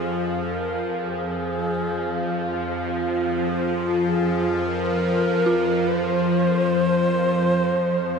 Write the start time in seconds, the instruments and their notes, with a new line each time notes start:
Already playing: synth drone F2 F3, shakuhachi G#4
0.44 shakuhachi A4
0.56 shakuhachi A#4
1.06 shakuhachi G#4
4.07 shakuhachi G#4
4.66 shakuhachi A#4
5.46 synth bell F4
5.87 shakuhachi B4
6.00 shakuhachi C5